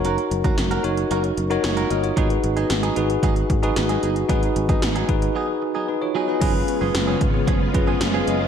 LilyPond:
<<
  \new Staff \with { instrumentName = "Tine electric piano" } { \time 4/4 \key gis \dorian \tempo 4 = 113 << { r2. <eis' cis''>8 <fis' dis''>16 <eis' cis''>16~ | <eis' cis''>16 r2. r8. | r2. <dis' b'>16 <eis' cis''>16 <fis' dis''>16 <dis' b'>16~ | <dis' b'>16 r2. <gis' eis''>16 dis''16 <eis' cis''>16 | } \\ { <dis' fis' ais' cis''>4~ <dis' fis' ais' cis''>16 r16 <dis' fis' ais' cis''>4~ <dis' fis' ais' cis''>16 <dis' fis' ais' cis''>4~ <dis' fis' ais' cis''>16 | <dis' fis' gis' b'>4. <dis' fis' gis' b'>4~ <dis' fis' gis' b'>16 <dis' fis' gis' b'>4~ <dis' fis' gis' b'>16 | <dis' fis' gis' b'>4. <dis' fis' gis' b'>4 r4. | <cis' eis' gis' b'>4.~ <cis' eis' gis' b'>16 r8. <cis' eis' gis' b'>4 r8 | } >> }
  \new Staff \with { instrumentName = "Clean electric guitar" } { \time 4/4 \key gis \dorian <ais cis' fis' ais'>16 r8 <ais cis' fis' ais'>16 r16 <ais cis' fis' ais'>16 r8 <ais cis' fis' ais'>16 r8 <ais cis' fis' ais'>16 r16 <ais cis' fis' ais'>16 <ais cis' fis' ais'>16 r16 | <fis b dis' gis'>16 r8 <fis b dis' gis'>16 r16 <fis b dis' gis'>16 r8 <fis b dis' gis'>16 r8 <fis b dis' gis'>16 r16 <fis b dis' gis'>16 <fis b dis' gis'>16 r16 | <fis b dis' gis'>16 r8 <fis b dis' gis'>16 r16 <fis b dis' gis'>16 r8 <fis b dis' gis'>16 r8 <fis b dis' gis'>16 r8 <fis b dis' gis'>16 <fis b dis' gis'>16 | <eis b cis' gis'>16 r8 <eis b cis' gis'>16 r16 <eis b cis' gis'>16 r8 <eis b cis' gis'>16 r8 <eis b cis' gis'>16 r16 <eis b cis' gis'>16 <eis b cis' gis'>16 r16 | }
  \new Staff \with { instrumentName = "String machine" } { \time 4/4 \key gis \dorian r1 | r1 | r1 | <cis gis b eis'>1 | }
  \new Staff \with { instrumentName = "Fretless electric bass" } { \clef bass \time 4/4 \key gis \dorian fis,,8 fis,,8 fis,,8 fis,,8 fis,,8 fis,,8 fis,,8 g,,8 | gis,,8 gis,,8 gis,,8 gis,,8 gis,,8 gis,,8 gis,,8 g,,8 | gis,,8 gis,,8 gis,,8 gis,,8 r2 | fis,,8 r16 fis,,16 fis,,8 gis,,8 fis,,8 fis,,8 fis,,8 fis,,8 | }
  \new DrumStaff \with { instrumentName = "Drums" } \drummode { \time 4/4 hh16 hh16 hh16 <hh bd>16 <hh sn>16 hh16 hh16 hh16 hh16 hh16 hh16 hh16 <hh sn>16 hh16 hh16 hh16 | <hh bd>16 hh16 hh16 hh16 <hh sn>16 hh16 hh16 hh16 <hh bd>16 hh16 <hh bd>16 hh16 <hh sn>16 hh16 hh16 hh16 | <hh bd>16 hh16 hh16 <hh bd>16 <hh sn>16 hh16 <hh bd>16 hh16 r4 r4 | <cymc hh bd>8 hh8 <hh sn>8 <hh bd>8 <hh bd>8 <hh bd>8 <hh sn>8 hh8 | }
>>